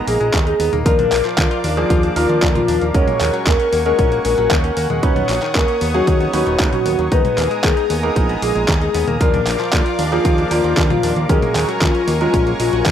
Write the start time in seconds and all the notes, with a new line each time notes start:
Already playing: G#3 B3 D#4 G#4 A#4 D#5 A#5
0.07 A#1 A#3 G#4, open hi-hat
0.20 A#1 G#3, closed hi-hat
0.34 D#2 D#3, kick, clap, closed hi-hat
0.47 D#4 G#4, closed hi-hat
0.60 D#2 B3, open hi-hat
0.73 D#2 A#3, closed hi-hat, high tom
0.86 D#2 F3 A#3 D4 F4 A#4 D5 F5 D6, kick, closed hi-hat
0.99 D4, closed hi-hat, high tom
1.12 A#1 A#3, clap, open hi-hat
1.25 F3, clap, closed hi-hat
1.38 D#2 D3 F4, kick, clap, closed hi-hat
1.51 F4, closed hi-hat
1.64 D#2 D4, open hi-hat
1.77 F3 A#3 D4 F4 G#4, closed hi-hat
1.90 D#2 F4, kick, closed hi-hat
2.03 D4, closed hi-hat
2.16 D#2 F3 A#3 D4 F4 A#4, open hi-hat
2.29 D#2 F3, closed hi-hat
2.42 D#2 D3, kick, clap, closed hi-hat
2.55 F4, closed hi-hat, high tom
2.68 D#2 D4, open hi-hat
2.81 D#2 A#3, closed hi-hat
2.94 D#2 G#3 C#4 F#4 A#4 C#5 F#5 G#5 C#6, kick, closed hi-hat
3.07 A#3, closed hi-hat, high tom
3.20 D#2 G#3, clap, open hi-hat
3.33 F#3, closed hi-hat
3.46 D#2 C#3 A#4, kick, clap, closed hi-hat
3.60 C#4, closed hi-hat
3.72 D#2 A#3, open hi-hat
3.85 G#3 C#4 F#4 A#4, closed hi-hat
3.99 A#1 C#4, kick, closed hi-hat
4.12 A#3, closed hi-hat
4.25 A#1 G#3 A#4, open hi-hat
4.38 A#1 F#3, closed hi-hat
4.51 D#2 C#3, kick, clap, closed hi-hat
4.63 C#4 A#4, closed hi-hat
4.77 D#2 A#3, open hi-hat
4.90 D#2 G#3, closed hi-hat, high tom
5.03 D#2 F#3 C#4 D#4 B4 C#5 C#6 D#6, kick, closed hi-hat
5.16 B3, closed hi-hat, high tom
5.29 A#1 F#3, clap, open hi-hat
5.42 D#3, clap, closed hi-hat
5.55 D#2 C#3 A#4, kick, clap, closed hi-hat
5.68 C#4, closed hi-hat
5.81 D#2 B3, open hi-hat
5.94 F#3 C#4 D#4 F#4 G#4, closed hi-hat
6.07 D#2 C#4, kick, closed hi-hat
6.20 B3, closed hi-hat
6.33 D#2 F#3 C#4 D#4 F#4 B4, open hi-hat
6.46 D#1 D#3, closed hi-hat
6.60 D#2 C#3, kick, clap, closed hi-hat
6.73 C#4 F#4, closed hi-hat, high tom
6.86 D#2 B3, open hi-hat
6.99 D#2 F#3, closed hi-hat
7.12 D#2 G#3 B3 D#4 B4 G#5 A#5 D#6, kick, closed hi-hat
7.25 B3, closed hi-hat, high tom
7.38 D#2 A#3, clap, open hi-hat
7.51 G#3, closed hi-hat
7.64 D#2 D#3 G#4, kick, clap, closed hi-hat
7.77 D#4, closed hi-hat
7.90 D#2 B3, open hi-hat
8.03 G#3 A#3 B3 D#4 G#4 A#4, closed hi-hat
8.16 A#1 D#4, kick, closed hi-hat
8.29 B3, closed hi-hat
8.42 A#1 A#3 G#4, open hi-hat
8.55 A#1 G#3, closed hi-hat
8.68 D#2 D#3, kick, clap, closed hi-hat
8.81 D#4 G#4, closed hi-hat
8.94 D#2 B3, open hi-hat
9.08 D#2 A#3, closed hi-hat, high tom
9.20 D#2 F3 A#3 D4 F4 A#4 D5 F5 D6, kick, closed hi-hat
9.34 D4, closed hi-hat, high tom
9.47 A#1 A#3, clap, open hi-hat
9.60 F3, clap, closed hi-hat
9.73 D#2 D3 F4, kick, clap, closed hi-hat
9.86 F4, closed hi-hat
9.99 D#2 D4, open hi-hat
10.12 F3 A#3 D4 F4 G#4, closed hi-hat
10.25 D#2 F4, kick, closed hi-hat
10.38 D4, closed hi-hat
10.51 D#2 F3 A#3 D4 F4 A#4, open hi-hat
10.64 D#2 F3, closed hi-hat
10.77 D#2 D3, kick, clap, closed hi-hat
10.90 F4, closed hi-hat, high tom
11.03 D#2 D4, open hi-hat
11.16 D#2 A#3, closed hi-hat
11.29 D#2 F#3 G#3 C#4 G#4 A#4 G#5 A#5 C#6, kick, closed hi-hat
11.42 A#3, closed hi-hat, high tom
11.55 D#2 G#3, clap, open hi-hat
11.69 F#3, closed hi-hat
11.81 D#2 C#3 F4, kick, clap, closed hi-hat
11.95 C#4, closed hi-hat
12.08 D#2 A#3, open hi-hat
12.21 F#3 G#3 C#4 F4 A#4, closed hi-hat
12.34 A#1 C#4, kick, closed hi-hat
12.47 A#3, closed hi-hat
12.60 A#1 G#3 F4, open hi-hat
12.73 A#1 F#3, closed hi-hat
12.86 D#2 C#3, kick, clap, closed hi-hat